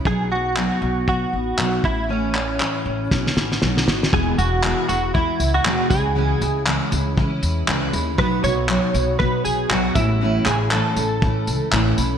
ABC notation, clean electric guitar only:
X:1
M:4/4
L:1/16
Q:"Swing 16ths" 1/4=118
K:E
V:1 name="Clean electric guitar"
G2 F6 F6 E2 | C12- C2 z2 | G2 F4 F2 E3 F3 G2- | G4 z12 |
B2 c6 B2 G2 F2 E2- | E2 G2 A8 z4 |]